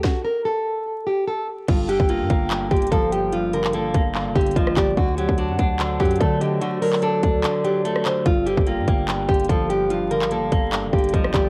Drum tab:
CC |--------------------------------|x-------------------------------|--------------------------------|--------------------------------|
HH |--------------------------------|x---x---x---x---x---xxxxx---x---|x---x---x---x---x---xxxxx---x---|x---x---x---x---x---xxxxx---x---|
CP |--------------------------------|----------------x---------------|------x---------x-----------x---|----------------x---------------|
SD |o-------------------------------|--------------------------------|--------------------------r-----|--------------------------------|
BD |o-------------------------------|o-----o-----o-------o---o-------|------------o-------o---o---o---|o-----o-----o-------o---o-------|

CC |--------------------------------|--------------------------------|--------------------------------|
HH |x---o---x---x---x---x---x---x---|x---x---x---x---x---xxxxx---x---|x---x---x---x---x---xxxxx---x---|
CP |------x---------x-----------x---|----------------x---------------|------x---------x-----------x---|
SD |--------------------------r-----|--------------------------------|--------------------------r-----|
BD |------------o-------------------|o-----o-----o-------o---o-------|------------o-------o---o---o---|